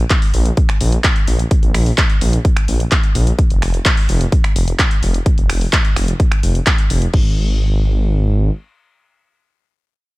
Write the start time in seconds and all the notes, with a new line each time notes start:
0.10 kick, clap, closed hi-hat
0.22 open hi-hat
0.34 A#1, open hi-hat
0.45 closed hi-hat
0.57 kick, closed hi-hat
0.69 finger snap, closed hi-hat
0.81 A#1, open hi-hat
0.92 closed hi-hat
1.04 kick, clap, closed hi-hat
1.16 closed hi-hat
1.28 A#1, open hi-hat
1.39 closed hi-hat
1.51 kick, closed hi-hat
1.63 A#1, closed hi-hat
1.74 A#1, finger snap, open hi-hat
1.86 open hi-hat
1.98 kick, clap, closed hi-hat
2.10 closed hi-hat
2.21 A#1, open hi-hat
2.33 closed hi-hat
2.45 kick, closed hi-hat
2.57 finger snap, closed hi-hat
2.68 A#1, open hi-hat
2.80 closed hi-hat
2.91 kick, clap, closed hi-hat
3.04 closed hi-hat
3.15 A#1, open hi-hat
3.27 closed hi-hat
3.39 kick, closed hi-hat
3.50 F1, closed hi-hat
3.62 F1, finger snap, open hi-hat
3.74 closed hi-hat
3.85 kick, clap, closed hi-hat
3.97 open hi-hat
4.09 F1, open hi-hat
4.21 closed hi-hat
4.32 kick, closed hi-hat
4.44 finger snap, closed hi-hat
4.56 F1, open hi-hat
4.68 closed hi-hat
4.79 kick, clap, closed hi-hat
4.91 closed hi-hat
5.02 F1, open hi-hat
5.14 closed hi-hat
5.26 kick, closed hi-hat
5.38 F1, closed hi-hat
5.49 F1, finger snap, open hi-hat
5.61 open hi-hat
5.73 kick, clap, closed hi-hat
5.85 closed hi-hat
5.96 F1, finger snap, open hi-hat
6.08 closed hi-hat
6.20 kick, closed hi-hat
6.32 finger snap, closed hi-hat
6.43 F1, open hi-hat
6.55 closed hi-hat
6.67 kick, clap, closed hi-hat
6.78 closed hi-hat
6.90 F1, open hi-hat
7.02 closed hi-hat
7.13 G#1, kick, crash